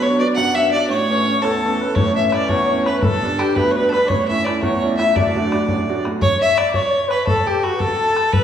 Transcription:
Already playing: upright piano B1 B2
0.02 upright piano F#3 B3 D4, fiddle C#5, flute C#5
0.19 upright piano F#3 B3 D4, fiddle D5, flute D5
0.34 upright piano F#2, fiddle F#5, flute F#5
0.55 upright piano F#3 B3 D4, fiddle E5, flute E5
0.72 upright piano F#3 B3 D4, fiddle D5, flute D5
0.89 upright piano A1 A2, fiddle C#5, flute C#5
1.09 upright piano E3 A3 C#4
1.26 upright piano E3 A3 C#4
1.42 upright piano E2, fiddle A4, flute A4
1.63 upright piano E3 A3 C#4
1.80 upright piano E3 A3 C#4, flute B4
1.95 upright piano A1 A2, fiddle C#5, flute C#5, bodhran
2.06 bodhran
2.16 upright piano E3 A3 C#4, fiddle E5, flute E5, bodhran
2.29 fiddle D5 E5, bodhran
2.33 upright piano E3 A3 C#4, flute D5
2.49 upright piano E2, fiddle C#5, flute C#5, bodhran
2.60 bodhran
2.69 upright piano E3 A3 C#4, flute C#5
2.82 upright piano E3, fiddle B4, flute C#5
2.86 upright piano A3 C#4, flute B4, bodhran
2.96 fiddle B4
3.02 upright piano G1 G2, fiddle A4, flute A4, bodhran
3.13 bodhran
3.22 upright piano G3 B3 D4, bodhran
3.36 upright piano G3 B3 D4, fiddle G4, flute A4, bodhran
3.41 flute G4
3.55 upright piano D2, fiddle B4, flute B4, bodhran
3.66 bodhran
3.71 fiddle C#5
3.75 upright piano G3 B3 D4, fiddle B4, flute B4
3.89 upright piano G3 B3 D4, fiddle A4 B4, bodhran
3.94 flute B4
4.04 fiddle C#5, flute D5
4.10 upright piano A1 A2, flute C#5, bodhran
4.19 bodhran
4.28 upright piano A3 C#4 E4, fiddle E5, bodhran
4.45 upright piano A3 C#4 E4, fiddle D5, bodhran
4.55 fiddle D5
4.61 upright piano E2, fiddle C#5, flute C#5, bodhran
4.73 bodhran
4.82 upright piano A3 C#4 E4, flute D5
4.97 upright piano A3 C#4 E4, fiddle E5, bodhran
5.02 flute E5
5.15 upright piano D1 D2, fiddle D5, flute D5, bodhran
5.26 bodhran
5.35 upright piano A3 D4 F#4, bodhran
5.52 upright piano A3 D4 F#4, bodhran
5.68 upright piano A1, bodhran
5.79 bodhran
5.88 upright piano A3 D4 F#4
6.05 upright piano A3 D4 F#4, bodhran
6.21 fiddle C#5, flute C#5, bodhran
6.32 bodhran
6.41 fiddle E5, flute E5, bodhran
6.58 fiddle D5, flute D5, bodhran
6.74 fiddle C#5, flute C#5, bodhran
6.85 bodhran
6.91 flute D5
6.95 flute C#5
7.08 flute B4 C#5, fiddle B4, bodhran
7.26 fiddle A4, flute A4, bodhran
7.37 bodhran
7.47 fiddle G4, flute G4, bodhran
7.63 fiddle F#4, flute F#4, bodhran
7.75 flute B4
7.79 fiddle A4, flute A4, bodhran
7.90 bodhran
8.16 bodhran
8.33 fiddle B4, flute B4, bodhran

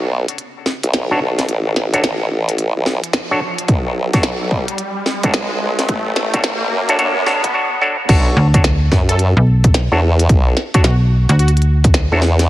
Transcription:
Already playing: wobble bass B1, riser
0.28 closed hi-hat
0.38 closed hi-hat
0.66 snare
0.83 wobble bass B1, closed hi-hat
0.93 wobble bass B1, snare, closed hi-hat
1.11 clav D4 F#4 A4 C#5
1.21 wobble bass B1
1.39 snare, closed hi-hat
1.48 wobble bass A1, closed hi-hat
1.76 snare
1.93 clav D4 F#4 A4 C#5, closed hi-hat
2.04 snare, closed hi-hat
2.31 wobble bass A1
2.49 closed hi-hat
2.58 closed hi-hat
2.76 wobble bass B1
2.86 snare
3.04 closed hi-hat
3.13 snare, closed hi-hat
3.31 clav D4 F#4 A4 C#5
3.58 closed hi-hat
3.68 wobble bass B1, kick, closed hi-hat
4.13 wobble bass B1, clav D4 F#4 A4 C#5, kick, snare, closed hi-hat
4.23 snare, closed hi-hat
4.51 kick
4.68 closed hi-hat
4.78 closed hi-hat
5.06 snare
5.23 wobble bass B1, clav D4 F#4 A4 C#5, kick, closed hi-hat
5.34 wobble bass B1, snare, closed hi-hat
5.61 wobble bass B1
5.79 snare, closed hi-hat
5.89 wobble bass A1, kick, closed hi-hat
6.16 snare
6.34 clav D4 F#4 A4 C#5, kick, closed hi-hat
6.44 snare, closed hi-hat
6.71 wobble bass F#2
6.89 clav D4 F#4 A4 C#5, closed hi-hat
6.99 clav D4 F#4 A4 C#5, closed hi-hat
7.26 wobble bass B1, clav D4 F#4 A4 C#5, snare
7.44 kick, closed hi-hat
7.54 clav D4 F#4 A4 C#5
7.82 clav D4 F#4 A4 C#5
8.09 wobble bass B1, clav D4 F#4 A4 C#5, kick, closed hi-hat, crash
8.37 fm bass D2
8.54 clav D4 F#4 A4 C#5, kick, closed hi-hat
8.64 snare, closed hi-hat
8.92 wobble bass F#2, kick, snare
9.09 digital synth lead A4, closed hi-hat
9.19 closed hi-hat
9.37 fm bass B1
9.64 kick, closed hi-hat
9.74 snare, closed hi-hat
9.92 wobble bass E2, clav D4 F#4 A4 C#5
10.19 closed hi-hat
10.29 wobble bass B1, kick, closed hi-hat
10.57 snare
10.74 clav D4 F#4 A4 C#5, digital synth lead F#4, kick, closed hi-hat
10.84 fm bass B1, digital synth lead F#4, snare, closed hi-hat
11.29 fm bass D2, digital synth lead F#4, closed hi-hat
11.39 digital synth lead F#4, closed hi-hat
11.48 closed hi-hat
11.57 closed hi-hat
11.62 closed hi-hat
11.84 kick, closed hi-hat
11.94 snare, closed hi-hat
12.12 wobble bass E2, clav D4 F#4 A4 C#5
12.22 snare
12.39 snare, closed hi-hat

